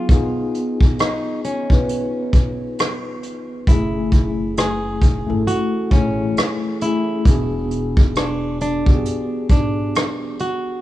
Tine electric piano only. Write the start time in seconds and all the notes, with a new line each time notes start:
Already playing: F#3 B3 D#4 F#4 G#4
0.10 B3 D#4 F4 G#4
1.70 B3 D#4 F4 B4
3.67 A3 C#4 E4 G#4
5.26 A3 C#4 E4 A4
5.90 A3 C#4 E4 G#4
6.82 A3 C#4 E4 G#4
7.25 B3 D4 F#4 G#4
8.85 B3 D4 F#4 G4
8.95 G#4